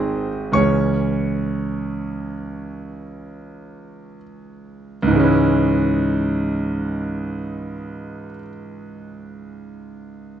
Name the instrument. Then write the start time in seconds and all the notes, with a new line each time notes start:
grand piano
Already playing: G#1 D#3 C4 G#4 C5 D#5 C6 D#6
0.52 C#2 E3 C#4 G#4 C#5 C#6
5.02 C#2
5.07 G#2
5.11 E3
5.15 G#3 C#4
5.24 E4